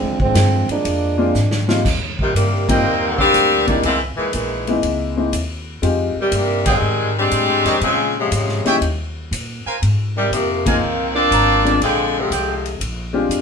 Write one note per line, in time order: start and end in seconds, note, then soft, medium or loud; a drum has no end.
0.00 0.18 C2 medium
0.00 0.20 D3 medium
0.00 0.20 F3 medium
0.00 0.20 G#3 medium
0.00 0.19 C4 medium
0.18 0.34 G#1 medium
0.18 0.66 D3 medium
0.18 0.66 F3 medium
0.18 0.67 G#3 medium
0.18 0.66 C4 loud
0.18 kick medium
0.34 0.66 G2 medium
0.34 snare medium
0.34 hi-hat pedal medium
0.34 ride medium
0.69 1.65 F3 medium
0.69 1.65 G#3 medium
0.69 1.65 A#3 medium
0.69 1.65 D4 medium
0.69 muted upright bass stroke soft
0.69 ride soft
0.85 1.33 F2 medium
0.85 ride medium
1.18 1.33 G#3 medium
1.18 1.33 A#3 medium
1.18 1.33 C4 medium
1.18 1.33 D4 medium
1.18 1.33 F4 medium
1.35 1.83 G#2 medium
1.35 snare soft
1.35 hi-hat pedal soft
1.51 snare medium
1.68 1.83 G3 medium
1.68 1.83 A#3 medium
1.68 1.83 C4 medium
1.68 1.83 D#4 medium
1.68 1.83 F4 medium
1.68 snare medium
1.85 2.33 D#2 medium
1.85 kick medium
1.85 snare soft
1.85 crash medium
2.19 2.35 A#2 medium
2.19 2.34 C3 medium
2.19 2.34 D#3 medium
2.19 2.34 G3 medium
2.19 kick medium
2.34 2.83 G2 medium
2.34 2.66 C3 medium
2.34 2.66 D#3 medium
2.34 2.66 G3 medium
2.34 2.66 A#3 medium
2.34 hi-hat pedal medium
2.34 ride medium
2.68 3.18 D#3 medium
2.68 3.18 G3 medium
2.68 2.83 G3 medium
2.68 3.17 A#3 medium
2.68 2.83 A#3 medium
2.68 3.17 C4 medium
2.68 2.83 C4 medium
2.68 2.83 D#4 soft
2.68 2.83 F4 medium
2.68 3.31 A#4 medium
2.68 3.31 C5 medium
2.68 3.31 D#5 medium
2.68 3.31 G5 loud
2.68 kick medium
2.68 ride medium
2.84 3.32 D#2 medium
3.18 3.65 G3 loud
3.18 3.65 A#3 medium
3.18 3.65 C4 medium
3.18 3.65 D4 loud
3.18 kick medium
3.34 3.82 D2 medium
3.34 snare soft
3.34 hi-hat pedal medium
3.34 ride medium
3.66 3.83 D#3 medium
3.66 3.82 G3 medium
3.66 3.81 G#3 medium
3.66 3.82 A#3 medium
3.66 3.83 A#3 medium
3.66 3.82 C4 medium
3.66 3.82 D4 medium
3.66 3.82 D#4 medium
3.66 3.82 E4 medium
3.66 kick medium
3.66 ride soft
3.83 4.16 C2 medium
3.83 4.00 E3 medium
3.83 4.00 G#3 medium
3.83 4.00 A#3 medium
3.83 4.00 C4 medium
3.83 ride medium
4.16 4.32 A#2 medium
4.16 4.32 D#3 medium
4.16 4.32 E3 medium
4.16 4.32 G#3 medium
4.16 muted upright bass stroke soft
4.33 4.82 A#1 medium
4.33 4.80 A#2 medium
4.33 4.80 D#3 medium
4.33 4.80 E3 medium
4.33 4.80 G#3 medium
4.33 hi-hat pedal medium
4.33 ride medium
4.67 5.14 G#3 medium
4.67 5.14 A#3 medium
4.67 5.14 C4 medium
4.67 5.14 D#4 medium
4.67 5.14 E4 medium
4.67 ride soft
4.83 5.32 C#2 medium
4.83 ride medium
5.17 5.32 G#3 medium
5.17 5.32 A#3 medium
5.17 5.32 C4 medium
5.17 5.32 D#4 medium
5.17 5.32 E4 medium
5.33 5.81 D#2 medium
5.33 hi-hat pedal medium
5.33 ride medium
5.82 6.14 F2 medium
5.82 6.13 G#3 medium
5.82 6.13 C4 medium
5.82 6.13 D#4 medium
5.82 6.13 F4 medium
5.82 6.14 G4 medium
5.82 ride medium
6.16 6.33 C3 medium
6.16 6.32 G3 medium
6.16 muted upright bass stroke soft
6.20 6.33 D#3 medium
6.32 6.81 G2 loud
6.32 6.68 C3 medium
6.32 6.66 D#3 medium
6.32 6.66 G3 medium
6.32 6.67 A#3 medium
6.32 hi-hat pedal medium
6.32 ride medium
6.66 7.13 D#3 medium
6.66 7.14 G3 medium
6.66 7.13 G#3 medium
6.66 7.13 C4 medium
6.66 6.77 G#4 medium
6.66 6.77 D#5 medium
6.66 6.77 F5 medium
6.66 6.77 G5 medium
6.66 kick medium
6.66 ride medium
6.81 7.30 G#2 medium
7.18 7.83 G3 loud
7.18 7.82 G#3 loud
7.18 7.81 C4 loud
7.18 7.83 D4 loud
7.31 7.49 A2 medium
7.31 hi-hat pedal medium
7.31 ride medium
7.49 7.64 G#2 medium
7.65 7.80 F2 medium
7.65 7.77 A#4 medium
7.65 7.77 C5 medium
7.65 7.77 C#5 medium
7.65 7.77 D#5 medium
7.65 snare soft
7.65 ride soft
7.81 8.30 A#2 medium
7.81 8.14 C#3 medium
7.81 8.14 F3 medium
7.81 8.15 G#3 medium
7.81 8.14 C4 medium
7.81 ride medium
8.18 8.32 C3 medium
8.18 8.32 C#3 medium
8.18 8.32 F3 medium
8.18 8.32 G#3 medium
8.32 8.63 G#2 medium
8.32 8.80 C3 medium
8.32 8.80 C#3 medium
8.32 8.80 F3 medium
8.32 8.79 G#3 medium
8.32 hi-hat pedal medium
8.32 ride medium
8.48 snare soft
8.65 8.80 A#3 medium
8.65 8.80 C#4 medium
8.65 8.80 D#4 medium
8.65 8.80 E4 medium
8.65 8.80 G4 medium
8.65 8.77 C#5 medium
8.65 8.77 D#5 medium
8.65 8.77 E5 medium
8.65 8.77 G5 loud
8.65 muted upright bass stroke soft
8.65 snare soft
8.65 ride soft
8.81 9.30 D#2 medium
8.81 ride medium
9.31 9.63 A#2 medium
9.31 hi-hat pedal medium
9.31 ride medium
9.66 9.77 A#4 medium
9.66 9.77 C5 medium
9.66 9.77 F5 medium
9.66 9.77 G#5 medium
9.66 muted upright bass stroke soft
9.82 10.30 G#2 medium
9.82 ride medium
10.16 10.31 C3 medium
10.16 10.31 D#3 medium
10.16 10.31 G3 medium
10.31 10.79 F2 medium
10.31 10.64 C3 medium
10.31 10.63 D#3 medium
10.31 10.63 F3 medium
10.31 10.64 A#3 medium
10.31 hi-hat pedal soft
10.31 ride medium
10.65 11.16 D#3 medium
10.65 11.14 F3 medium
10.65 10.80 A#3 medium
10.65 11.13 A#3 medium
10.65 10.80 C4 medium
10.65 11.14 C4 medium
10.65 10.80 D#4 medium
10.65 10.80 F4 medium
10.65 10.80 G#4 medium
10.65 10.77 A#4 medium
10.65 10.77 C5 medium
10.65 10.77 F5 medium
10.65 10.77 G#5 medium
10.65 kick medium
10.65 ride medium
10.82 11.30 C2 medium
11.15 11.77 F3 medium
11.15 11.77 A#3 loud
11.15 11.77 C4 medium
11.15 11.77 D4 loud
11.31 11.79 G#1 medium
11.31 11.55 A#4 medium
11.31 11.55 C5 medium
11.31 11.55 F5 medium
11.31 11.55 A#5 medium
11.31 hi-hat pedal medium
11.31 ride medium
11.65 11.79 G#3 medium
11.65 11.79 C4 medium
11.65 11.79 D4 medium
11.65 11.79 F4 medium
11.65 11.80 A#4 medium
11.65 ride soft
11.80 12.29 A#1 medium
11.80 12.16 D3 medium
11.80 12.16 F3 medium
11.80 12.16 G#3 medium
11.80 12.16 C4 loud
11.80 12.04 G#4 medium
11.80 12.04 C5 medium
11.80 12.05 D5 medium
11.80 12.04 G5 medium
11.80 ride medium
12.19 12.33 C3 medium
12.19 12.32 D3 medium
12.19 12.33 F3 medium
12.19 12.33 G#3 medium
12.30 12.79 C2 medium
12.30 12.79 C3 medium
12.30 12.79 D3 medium
12.30 12.54 G#4 medium
12.30 12.54 C5 soft
12.30 12.54 D5 medium
12.30 12.54 G5 medium
12.30 hi-hat pedal medium
12.30 ride medium
12.34 12.79 F3 medium
12.34 12.80 G#3 medium
12.66 ride soft
12.80 13.29 A#1 medium
12.80 ride medium
13.13 13.41 G#3 medium
13.13 13.41 C4 medium
13.13 13.41 D4 medium
13.13 13.41 F4 medium
13.13 13.41 G4 medium
13.29 13.41 F2 medium
13.29 hi-hat pedal medium
13.29 ride medium